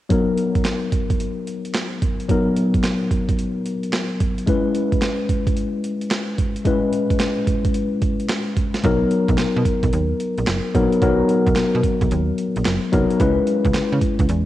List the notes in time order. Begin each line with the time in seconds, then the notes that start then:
0.10 F#3 B3 D#4 A#4, kick, closed hi-hat
0.38 closed hi-hat
0.55 kick, closed hi-hat
0.65 snare, clap, closed hi-hat
0.92 kick, closed hi-hat
1.10 kick, closed hi-hat
1.20 closed hi-hat
1.47 closed hi-hat
1.65 closed hi-hat
1.74 snare, clap, closed hi-hat
2.02 kick, closed hi-hat
2.20 closed hi-hat
2.28 F#3 B3 D#4 A#4, kick, closed hi-hat
2.56 closed hi-hat
2.74 kick, closed hi-hat
2.83 snare, clap, closed hi-hat
3.11 kick, closed hi-hat
3.29 kick, closed hi-hat
3.39 closed hi-hat
3.66 closed hi-hat
3.83 closed hi-hat
3.93 snare, clap, closed hi-hat
4.20 kick, closed hi-hat
4.38 closed hi-hat
4.46 G#3 C#4 E4 B4, kick, closed hi-hat
4.75 closed hi-hat
4.92 kick, closed hi-hat
5.02 snare, clap, closed hi-hat
5.29 kick, closed hi-hat
5.47 kick, closed hi-hat
5.57 closed hi-hat
5.84 closed hi-hat
6.01 closed hi-hat
6.11 snare, clap, closed hi-hat
6.38 kick, closed hi-hat
6.56 closed hi-hat
6.65 G#3 C#4 E4 B4, kick, closed hi-hat
6.93 closed hi-hat
7.10 kick, closed hi-hat
7.20 snare, clap, closed hi-hat
7.47 kick, closed hi-hat
7.65 kick, closed hi-hat
7.74 closed hi-hat
8.02 kick, closed hi-hat
8.20 closed hi-hat
8.29 snare, clap, closed hi-hat
8.57 kick, closed hi-hat
8.74 snare, closed hi-hat
8.84 B1 F#3 B3 D#4 A#4, kick, closed hi-hat
9.11 closed hi-hat
9.28 B1, kick, closed hi-hat
9.38 snare, clap, closed hi-hat
9.56 B2
9.65 kick, closed hi-hat
9.83 B1, kick, closed hi-hat
9.93 D#2, closed hi-hat
10.20 closed hi-hat
10.38 A#1, closed hi-hat
10.47 F#1, snare, clap, closed hi-hat
10.74 A#1 F#3 B3 D#4 A#4, kick, closed hi-hat
10.92 closed hi-hat
11.02 B1 F#3 B3 D#4 A#4, kick, closed hi-hat
11.29 closed hi-hat
11.47 B1, kick, closed hi-hat
11.56 snare, clap, closed hi-hat
11.75 B2
11.83 kick, closed hi-hat
12.01 B1, kick, closed hi-hat
12.11 D#2, closed hi-hat
12.38 closed hi-hat
12.56 A#1, closed hi-hat
12.65 F#1, snare, clap, closed hi-hat
12.92 C2 F#3 B3 D#4 A#4, kick, closed hi-hat
13.10 closed hi-hat
13.20 C#2 G#3 C#4 E4 B4, kick, closed hi-hat
13.47 closed hi-hat
13.65 C#2, kick, closed hi-hat
13.74 C#3, snare, clap, closed hi-hat
13.92 C#3
14.01 kick, closed hi-hat
14.19 C#2, kick, closed hi-hat
14.29 E2, closed hi-hat